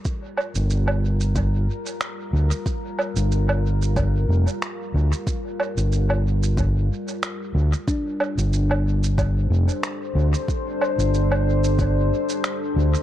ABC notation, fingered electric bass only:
X:1
M:4/4
L:1/16
Q:"Swing 16ths" 1/4=92
K:Gm
V:1 name="Fingered electric bass" clef=bass
z3 G,,,6- G,,, z4 D,, z | z3 G,,,6- G,,, F,,, z3 D,, z | z3 G,,,6- G,,, z4 D,, z | z3 G,,,6- G,,, F,,, z3 D,, z |
z3 G,,,6- G,,, z4 D,, z |]